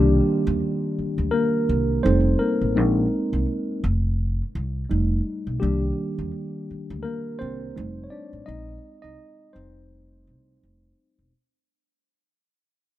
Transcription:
Already playing: upright bass C2, tine electric piano D#3 G3 A#3 D4 G4
0.47 upright bass D#2
0.99 muted upright bass stroke
1.18 upright bass D2
1.31 tine electric piano A#3 A#4
1.69 upright bass C2
2.03 upright bass F1, tine electric piano G3 C4 D#4 A4 C5
2.39 tine electric piano A#3 A#4
2.61 upright bass A1
2.75 upright bass A#1, tine electric piano G#3 C4 D#4
3.33 upright bass C2
3.84 upright bass F1
4.55 upright bass C2
4.89 upright bass F1, tine electric piano G3 A3 D#4
5.47 upright bass B1
5.60 upright bass C2, tine electric piano D#3 G3 A#3 D4 G4
6.19 upright bass D#2
6.70 muted upright bass stroke
6.90 upright bass D2
7.03 tine electric piano A#3 A#4
7.39 upright bass C2, tine electric piano C4 C5
7.75 upright bass F1, tine electric piano G3 A3 D#4
8.04 tine electric piano C#5
8.10 tine electric piano D4 D5
8.33 upright bass A1
8.46 upright bass A#1, tine electric piano G#3 C4 D#4 D#5
9.02 upright bass C2, tine electric piano D#4 D#5
9.53 upright bass F1, tine electric piano G3 A3 C4 D#4 C5
10.27 upright bass C2
10.63 upright bass F1
11.19 upright bass E1

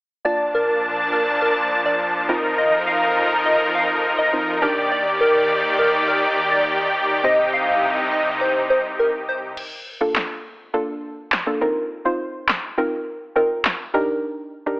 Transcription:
0.25 supersaw synth A#2 F3 D4 A5, synth pluck A#3 D4 F4 A5, digital synth lead D5
0.54 digital synth lead A#4
1.13 digital synth lead A#4
1.42 digital synth lead A#4
1.85 digital synth lead D5
2.29 supersaw synth F2 D#4 A#4, synth pluck C4 D#4 F4 A#4
2.58 digital synth lead D#5
2.87 digital synth lead F5
3.45 digital synth lead D#5
3.75 digital synth lead F5
4.18 digital synth lead D#5
4.33 synth pluck C4 D#4 F4 A#4
4.62 supersaw synth D#2 D#3 G4 D5, synth pluck D4 D#4 G4 A#4
4.91 digital synth lead D5
5.21 digital synth lead A#4
5.79 digital synth lead A#4
6.08 digital synth lead A#4
6.52 digital synth lead D5
7.24 supersaw synth C2 C3 D#4, synth pluck C4 D#4 G4 C5, digital synth lead D#5
7.53 digital synth lead F5
8.12 digital synth lead D#5
8.41 digital synth lead C5
8.70 digital synth lead C5
8.99 digital synth lead A#4
9.29 digital synth lead C5
9.57 crash
10.01 synth pluck A#3 D4 F4 A4
10.15 snare, clap
10.74 synth pluck A#3 D4 F4 A4
11.32 snare, clap
11.46 synth pluck A#3 D4 F4 A4
11.61 synth pluck C4 D#4 F4 A#4
12.05 synth pluck C4 D#4 F4 C5
12.48 snare, clap
12.78 synth pluck C4 D#4 F4 A#4
13.36 synth pluck C4 D#4 F4 A#4
13.65 snare, clap
13.94 synth pluck D4 D#4 G4 A#4
14.66 synth pluck D4 D#4 G4 A#4

